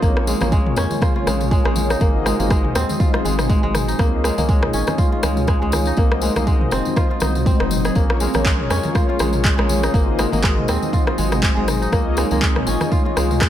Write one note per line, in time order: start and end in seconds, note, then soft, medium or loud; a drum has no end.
0.00 0.34 A#1 medium
0.00 1.99 C#3 medium
0.00 5.94 G#3 medium
0.00 0.41 A#3 medium
0.00 1.99 A#3 medium
0.00 0.58 C4 loud
0.00 0.38 C#4 medium
0.00 1.29 D#4 medium
0.00 1.01 F4 medium
0.00 0.38 F4 medium
0.00 1.99 F4 medium
0.00 0.38 G#4 medium
0.00 0.38 A#4 medium
0.00 0.38 C#5 medium
0.00 kick loud
0.00 tambourine soft
0.00 muted conga medium
0.17 cross-stick medium
0.27 0.51 G#3 medium
0.27 tambourine loud
0.27 muted conga soft
0.27 high conga medium
0.41 0.72 A#1 medium
0.41 2.01 A#3 medium
0.41 1.98 C#4 medium
0.41 1.98 F4 medium
0.41 1.98 G#4 medium
0.41 1.98 A#4 medium
0.41 1.98 C#5 loud
0.41 cross-stick medium
0.41 tambourine soft
0.41 low conga loud
0.52 1.26 G#3 loud
0.52 kick loud
0.52 tambourine soft
0.52 muted conga soft
0.66 mid tom medium
0.76 0.87 F2 medium
0.76 2.51 C#4 loud
0.76 cross-stick medium
0.76 tambourine medium
0.91 tambourine medium
0.91 muted conga soft
0.91 low conga loud
1.01 1.15 F4 medium
1.01 kick loud
1.01 cross-stick medium
1.01 tambourine soft
1.01 high conga medium
1.16 2.67 F4 medium
1.16 muted conga medium
1.26 1.58 A#1 medium
1.26 1.50 G#3 medium
1.26 cross-stick medium
1.26 tambourine medium
1.26 high conga medium
1.26 low conga medium
1.41 mid tom medium
1.41 tambourine soft
1.41 muted conga soft
1.51 1.64 G#3 loud
1.51 kick loud
1.51 tambourine soft
1.65 1.96 A#1 medium
1.65 2.06 G#3 medium
1.65 cross-stick medium
1.65 muted conga medium
1.65 high conga medium
1.76 tambourine medium
1.76 low conga loud
1.90 3.53 D#4 medium
1.90 cross-stick medium
1.90 tambourine soft
2.00 2.33 G#1 loud
2.00 3.97 D#3 medium
2.00 3.97 F#3 medium
2.00 2.39 A#3 loud
2.00 3.97 C4 medium
2.00 2.36 D#4 medium
2.00 2.36 F#4 medium
2.00 2.36 G#4 medium
2.00 2.36 C5 medium
2.00 2.36 D#5 medium
2.00 kick loud
2.00 tambourine soft
2.00 muted conga medium
2.26 2.49 G#3 medium
2.26 cross-stick medium
2.26 tambourine medium
2.26 muted conga soft
2.26 high conga medium
2.39 2.70 G#1 medium
2.39 3.99 A#3 medium
2.39 3.96 D#4 medium
2.39 3.96 F#4 medium
2.39 3.97 G#4 medium
2.39 3.96 C5 medium
2.39 3.97 D#5 medium
2.39 tambourine medium
2.39 low conga loud
2.50 3.23 G#3 loud
2.50 kick loud
2.50 cross-stick medium
2.50 tambourine soft
2.50 muted conga medium
2.64 mid tom medium
2.75 2.85 D#2 medium
2.75 4.55 C4 loud
2.75 cross-stick medium
2.75 tambourine loud
2.89 tambourine medium
2.89 muted conga soft
2.89 low conga loud
3.00 3.13 F4 loud
3.00 kick loud
3.00 tambourine soft
3.00 low conga medium
3.14 4.65 F4 medium
3.14 cross-stick medium
3.14 muted conga medium
3.25 3.57 G#1 medium
3.25 3.48 G#3 medium
3.25 tambourine medium
3.25 high conga medium
3.25 low conga medium
3.39 cross-stick medium
3.39 mid tom medium
3.39 tambourine medium
3.39 muted conga soft
3.50 3.62 G#3 loud
3.50 kick loud
3.50 tambourine soft
3.50 high conga loud
3.63 3.94 G#1 medium
3.63 4.04 G#3 loud
3.63 muted conga medium
3.75 cross-stick medium
3.75 mid tom medium
3.75 tambourine loud
3.88 5.50 D#4 medium
3.88 tambourine medium
3.99 4.31 C#2 loud
3.99 7.92 D#3 medium
3.99 4.37 A#3 loud
3.99 5.96 C#4 medium
3.99 4.34 D#4 medium
3.99 4.34 F4 medium
3.99 5.96 F4 medium
3.99 4.34 G#4 medium
3.99 4.34 D#5 medium
3.99 kick loud
3.99 cross-stick medium
3.99 tambourine soft
3.99 muted conga medium
4.24 4.48 G#3 medium
4.24 cross-stick medium
4.24 tambourine medium
4.24 muted conga soft
4.24 high conga medium
4.38 4.68 C#2 medium
4.38 5.97 A#3 medium
4.38 5.95 D#4 medium
4.38 5.95 F4 medium
4.38 5.95 G#4 medium
4.38 5.95 C#5 medium
4.38 5.95 D#5 medium
4.38 tambourine medium
4.38 low conga loud
4.49 5.22 G#3 loud
4.49 kick loud
4.49 tambourine soft
4.49 muted conga medium
4.63 cross-stick loud
4.63 mid tom medium
4.73 4.83 G#1 medium
4.73 6.48 C#4 loud
4.73 tambourine loud
4.87 cross-stick medium
4.87 tambourine soft
4.87 muted conga soft
4.87 low conga loud
4.98 5.12 F4 loud
4.98 kick loud
4.98 tambourine soft
4.98 high conga loud
5.12 6.63 F4 medium
5.12 muted conga medium
5.23 5.55 C#2 medium
5.23 5.47 G#3 medium
5.23 cross-stick loud
5.23 tambourine loud
5.23 high conga medium
5.23 low conga medium
5.37 mid tom medium
5.37 tambourine soft
5.37 muted conga soft
5.47 5.61 G#3 loud
5.47 kick loud
5.47 cross-stick medium
5.47 tambourine soft
5.61 5.92 C#2 medium
5.61 6.03 G#3 loud
5.61 muted conga soft
5.61 high conga medium
5.72 cross-stick medium
5.72 tambourine loud
5.72 low conga loud
5.85 7.21 D#4 medium
5.85 tambourine soft
5.97 6.29 C2 loud
5.97 7.94 F#3 medium
5.97 6.36 A#3 loud
5.97 6.33 C4 medium
5.97 7.94 C4 medium
5.97 6.33 D#4 medium
5.97 6.33 F#4 medium
5.97 6.33 C5 medium
5.97 6.33 D#5 medium
5.97 kick loud
5.97 tambourine soft
5.97 muted conga medium
6.12 cross-stick medium
6.22 6.46 G#3 medium
6.22 tambourine medium
6.22 muted conga soft
6.22 high conga medium
6.36 6.67 C2 medium
6.36 7.95 A#3 medium
6.36 7.93 C4 medium
6.36 7.93 D#4 medium
6.36 7.93 F#4 medium
6.36 7.93 C5 medium
6.36 7.93 D#5 loud
6.36 cross-stick medium
6.36 tambourine medium
6.36 low conga loud
6.47 8.01 G#3 loud
6.47 kick loud
6.47 tambourine soft
6.47 muted conga medium
6.61 mid tom medium
6.71 6.81 F#1 medium
6.71 7.46 C4 loud
6.71 cross-stick medium
6.71 tambourine medium
6.85 tambourine soft
6.85 muted conga soft
6.85 low conga loud
6.96 7.10 F4 loud
6.96 kick loud
6.96 cross-stick medium
6.96 tambourine soft
6.96 low conga medium
7.10 8.62 F4 medium
7.10 muted conga soft
7.20 7.53 C2 medium
7.20 7.59 D#4 medium
7.20 cross-stick medium
7.20 tambourine medium
7.20 high conga medium
7.20 low conga medium
7.35 mid tom medium
7.35 tambourine soft
7.35 muted conga soft
7.46 8.76 C4 medium
7.46 kick loud
7.46 tambourine soft
7.46 high conga loud
7.60 7.90 F#1 loud
7.60 9.22 D#4 medium
7.60 cross-stick loud
7.60 muted conga soft
7.71 mid tom medium
7.71 tambourine loud
7.85 9.21 G#4 medium
7.85 cross-stick medium
7.85 tambourine medium
7.95 8.28 A#1 loud
7.95 9.92 C#3 medium
7.95 11.89 G#3 medium
7.95 8.34 A#3 loud
7.95 9.92 A#3 medium
7.95 8.31 C#4 medium
7.95 8.31 F4 medium
7.95 9.92 F4 medium
7.95 8.31 G#4 medium
7.95 8.31 A#4 medium
7.95 8.31 C#5 medium
7.95 kick loud
7.95 tambourine soft
7.95 muted conga soft
8.10 cross-stick loud
8.20 8.44 G#3 medium
8.20 tambourine medium
8.20 muted conga soft
8.20 high conga medium
8.34 8.65 A#1 medium
8.34 9.93 A#3 medium
8.34 9.92 C#4 medium
8.34 9.91 F4 medium
8.34 9.92 G#4 medium
8.34 9.92 A#4 medium
8.34 9.92 C#5 medium
8.34 cross-stick medium
8.34 tambourine soft
8.34 low conga loud
8.45 9.19 G#3 loud
8.45 kick loud
8.45 clap medium
8.45 tambourine soft
8.45 muted conga soft
8.60 mid tom medium
8.70 8.80 F2 medium
8.70 10.44 C#4 loud
8.70 cross-stick medium
8.70 tambourine medium
8.83 tambourine soft
8.83 muted conga soft
8.83 low conga loud
8.95 9.08 F4 loud
8.95 kick loud
8.95 cross-stick medium
8.95 tambourine soft
8.95 high conga medium
9.09 10.60 F4 medium
9.09 muted conga soft
9.19 9.52 A#1 medium
9.19 9.43 G#3 medium
9.19 cross-stick medium
9.19 tambourine medium
9.19 high conga medium
9.19 low conga medium
9.33 mid tom medium
9.33 tambourine medium
9.33 muted conga soft
9.44 9.57 G#3 loud
9.44 kick loud
9.44 clap loud
9.44 tambourine soft
9.58 9.89 A#1 medium
9.58 9.99 G#3 loud
9.58 cross-stick loud
9.58 muted conga soft
9.58 high conga medium
9.69 tambourine loud
9.69 low conga medium
9.83 11.45 D#4 medium
9.83 cross-stick medium
9.83 tambourine medium
9.94 10.26 G#1 loud
9.94 11.91 D#3 medium
9.94 11.91 F#3 medium
9.94 10.32 A#3 loud
9.94 11.91 C4 medium
9.94 10.29 D#4 medium
9.94 10.29 F#4 medium
9.94 10.29 G#4 medium
9.94 10.29 C5 medium
9.94 10.29 D#5 medium
9.94 kick loud
9.94 tambourine soft
9.94 muted conga medium
10.19 10.42 G#3 medium
10.19 cross-stick medium
10.19 tambourine medium
10.19 muted conga soft
10.19 high conga medium
10.32 10.63 G#1 medium
10.32 11.92 A#3 medium
10.32 11.90 D#4 medium
10.32 11.90 F#4 medium
10.32 11.90 G#4 medium
10.32 11.90 C5 medium
10.32 11.90 D#5 loud
10.32 tambourine soft
10.32 low conga medium
10.43 11.17 G#3 loud
10.43 kick loud
10.43 cross-stick medium
10.43 clap medium
10.43 tambourine soft
10.43 muted conga medium
10.58 mid tom medium
10.68 10.78 D#2 medium
10.68 12.49 C4 loud
10.68 cross-stick medium
10.68 tambourine medium
10.82 tambourine soft
10.82 muted conga soft
10.82 low conga loud
10.93 11.06 F4 loud
10.93 kick loud
10.93 tambourine soft
10.93 low conga medium
11.07 12.58 F4 medium
11.07 cross-stick medium
11.07 muted conga medium
11.18 11.50 G#1 medium
11.18 11.42 G#3 medium
11.18 tambourine medium
11.18 high conga medium
11.18 low conga medium
11.32 cross-stick medium
11.32 mid tom medium
11.32 tambourine soft
11.32 muted conga soft
11.43 11.55 G#3 loud
11.43 kick loud
11.43 clap loud
11.43 tambourine soft
11.43 high conga loud
11.57 11.87 G#1 medium
11.57 11.98 G#3 loud
11.57 muted conga medium
11.68 cross-stick medium
11.68 mid tom medium
11.68 tambourine medium
11.82 13.44 D#4 medium
11.82 tambourine soft
11.92 12.24 C#2 loud
11.92 13.49 D#3 medium
11.92 13.49 G#3 medium
11.92 12.31 A#3 loud
11.92 13.49 C#4 medium
11.92 12.28 D#4 medium
11.92 13.49 F4 medium
11.92 12.28 F4 medium
11.92 12.28 G#4 medium
11.92 12.28 C#5 medium
11.92 12.28 D#5 medium
11.92 kick loud
11.92 cross-stick medium
11.92 tambourine soft
11.92 muted conga medium
12.17 12.41 G#3 medium
12.17 cross-stick medium
12.17 tambourine medium
12.17 muted conga soft
12.17 high conga medium
12.31 12.62 C#2 medium
12.31 13.49 A#3 medium
12.31 13.49 D#4 medium
12.31 13.49 F4 medium
12.31 13.49 G#4 medium
12.31 13.49 C#5 medium
12.31 13.49 D#5 medium
12.31 tambourine soft
12.31 low conga loud
12.42 13.15 G#3 loud
12.42 kick loud
12.42 clap medium
12.42 muted conga medium
12.56 cross-stick medium
12.56 mid tom medium
12.67 12.76 G#1 medium
12.67 13.49 C#4 loud
12.67 tambourine medium
12.80 cross-stick medium
12.80 tambourine soft
12.80 muted conga soft
12.80 low conga loud
12.92 13.05 F4 loud
12.92 kick loud
12.92 tambourine soft
12.92 high conga medium
13.05 13.49 F4 medium
13.05 muted conga medium
13.16 13.48 C#2 medium
13.16 13.40 G#3 medium
13.16 cross-stick medium
13.16 tambourine medium
13.16 high conga medium
13.16 low conga medium
13.30 mid tom medium
13.30 tambourine soft
13.30 muted conga soft
13.41 13.49 G#3 loud
13.41 kick loud
13.41 cross-stick medium
13.41 clap loud
13.41 tambourine soft